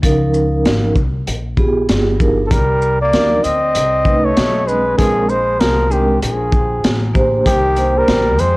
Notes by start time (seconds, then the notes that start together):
0.02 C#2 F3 C#4 D#4 A#4, kick, closed hi-hat
0.34 shaker
0.65 G#1, snare, closed hi-hat
0.96 C2, kick, shaker
1.27 A#1, closed hi-hat
1.57 B3 F4 G4 G#4, kick, shaker
1.89 G1, snare, closed hi-hat
2.19 F3 D4 D#4 A#4, kick, shaker
2.46 F3 A4
2.51 C2 G3 A#4, kick, closed hi-hat
2.82 shaker
3.02 A#3 D5
3.13 D#2 F3 D4 D#4 A#4, snare, closed hi-hat
3.44 D2 C4 D#5, closed hi-hat, shaker
3.75 C2, closed hi-hat
4.05 A3 C#4 D#4 B4, kick, shaker
4.25 A3 C#5
4.37 B1, snare, closed hi-hat
4.67 G#3 C4 D4 B4, shaker
4.98 A#1 F3 G#3 C4 D4 G#4 A#4, kick, closed hi-hat
5.29 G#3 C5, shaker
5.60 C2 F3 A#4, snare, closed hi-hat
5.90 D#3 G#3 C4 D4 G4 A#4, shaker
6.22 A#1 F3 G#4, closed hi-hat
6.52 kick, shaker
6.84 A1, snare, closed hi-hat
7.14 A#3 D4 G4 C5, kick, shaker
7.46 C2 D#3 G4, kick, closed hi-hat
7.76 A#3 D4 G4 C5, closed hi-hat, shaker
7.96 G3 A#4
8.08 A#1, snare, closed hi-hat
8.38 F2 G#3 C5, closed hi-hat, shaker